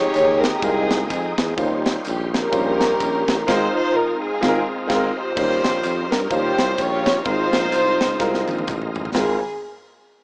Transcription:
Already playing: G#3 D#4 F4 G4 G#4 C#5 D#5 G5 C6
0.14 D#2, clap, ride, tambourine
0.41 A#4, snare, ride, tambourine
0.61 C2 G#3 C4 D#4 F4 G#4 A#4 G5, kick, ride, tambourine
0.91 snare, clap, ride, tambourine
1.09 F2 C4 D#4 G#4, kick, clap, ride, tambourine
1.38 E2, kick, snare, ride, tambourine
1.56 D#2 D#3 F3 C#4 D#4 F4 C5, kick, ride, tambourine
1.60 G3
1.86 snare, ride, tambourine
2.04 A#1 G4, clap, ride, tambourine
2.34 C#4 G4 A#4, snare, ride, tambourine
2.51 A#1 G3 C#4 D#4 F4 C5, kick, ride, tambourine
2.81 snare, clap, ride, tambourine
3.00 A#1, kick, clap, ride, tambourine
3.28 A1, kick, snare, ride, tambourine
3.47 G#1 G#2 G#3 C4 D#4 F4 A#4 C5, kick, snare, crash
3.52 C4
3.77 C5
3.95 A#4
4.22 C4 F4 G#4
4.41 G#1 G#3 C4 D#4 F4, kick, snare
4.48 A#4
4.87 G#1 G#3 C4 D#4 F4, kick, snare, crash
4.94 A#4
5.17 F4 G4 C5
5.35 D#2 D#3 G3 C#4 D#4 F4 A#4 C5, kick, crash, tambourine
5.64 A#1, snare, ride, tambourine
5.84 F2, clap, ride, tambourine
6.10 G2 A#4, snare, ride, tambourine
6.30 D#2 F3 C#4 D#4 F4 G4 C5, kick, ride, tambourine
6.36 G3
6.59 C2, snare, clap, ride, tambourine
6.78 A#1 F4 G4 C#5, kick, clap, ride, tambourine
7.06 kick, snare, ride, tambourine
7.25 G#1 G#2 G#3 C4 D#4 F4 A#4 C5, kick, ride, tambourine
7.53 A#1, snare, ride, tambourine
7.72 C2, clap, ride, tambourine
8.01 C#2, snare, ride, tambourine
8.19 C2 G#3 C4 D#4 F4 A#4, kick, snare, tambourine
8.34 snare
8.48 A#1, clap, high tom, tambourine
8.58 high tom
8.68 A1, kick, clap, mid tom, tambourine
8.82 mid tom
8.95 floor tom, tambourine
9.05 floor tom
9.14 G#1 G#3 C4 F4 G#4 A#4, snare, clap, floor tom, open hi-hat

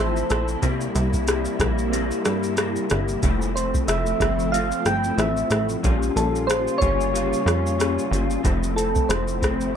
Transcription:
Already playing: A1 C3 F3 A3 C4 E4
0.00 A4 C5
0.16 shaker
0.29 A#1 C4 E4 A4, cross-stick, closed hi-hat, shaker
0.48 shaker
0.62 C2 C3 G3 A#3 E4, kick, closed hi-hat, shaker
0.81 shaker
0.94 C2 G3 A#3 E4, closed hi-hat, shaker
1.13 kick, shaker
1.27 C3 G3 A#3 E4, cross-stick, closed hi-hat, shaker
1.45 shaker
1.58 A#1 G3 A#3 E4, kick, cross-stick, closed hi-hat, shaker
1.78 shaker
1.91 C3 G3 A#3 E4, closed hi-hat, shaker
2.11 shaker
2.24 G2 G3 A#3 E4, cross-stick, closed hi-hat, shaker
2.43 shaker
2.56 C3 G3 A#3 E4, cross-stick, closed hi-hat, shaker
2.76 shaker
2.89 G1 G3 A#3 E4, cross-stick, closed hi-hat, shaker
3.08 shaker
3.22 F1 F3 A3 C4 E4, kick, closed hi-hat, shaker
3.42 shaker
3.54 A3 C4 E4 C5, closed hi-hat, shaker
3.74 kick, shaker
3.87 F1 F3 A3 C4 E4 E5, cross-stick, closed hi-hat, shaker
4.06 shaker
4.19 G1 A3 C4 E4, kick, cross-stick, closed hi-hat, shaker
4.39 shaker
4.52 F3 A3 C4 F5, closed hi-hat, shaker
4.72 shaker
4.85 G1 A3 C4 E4 G5, cross-stick, closed hi-hat, shaker
5.04 shaker
5.17 A1 F3 A3 C4 E4 E5, cross-stick, closed hi-hat, shaker
5.37 shaker
5.50 A1 A3 C4 E4, cross-stick, closed hi-hat, shaker
5.69 shaker
5.82 A#1 A#2 C#3 G3 A#3 C#4 F4, kick, closed hi-hat, shaker
6.03 shaker
6.15 A#1 G3 C#4 F4 A4, closed hi-hat, shaker
6.36 shaker
6.47 A#2 G3 C#4 F4 C5, cross-stick, closed hi-hat, shaker
6.68 shaker
6.78 G1 C#4 F4 C#5, kick, closed hi-hat, shaker
6.83 G3
7.01 shaker
7.13 A#2 G3 C#4 F4, closed hi-hat, shaker
7.33 shaker
7.46 F2 G3 C#4 F4, cross-stick, closed hi-hat, shaker
7.66 shaker
7.78 A#2 G3 C#4 F4, cross-stick, closed hi-hat, shaker
7.99 shaker
8.10 G1 G3 C#4 F4, closed hi-hat, shaker
8.31 shaker
8.43 F1 C3 F3 A3 C4 E4, kick, closed hi-hat, shaker
8.63 shaker
8.75 A3 C4 E4 A4, closed hi-hat, shaker
8.95 kick, shaker
9.08 F1 F3 A3 C4 E4 C5, cross-stick, closed hi-hat, shaker
9.28 shaker
9.41 G1 A3 C4 E4, kick, cross-stick, closed hi-hat, shaker
9.61 shaker

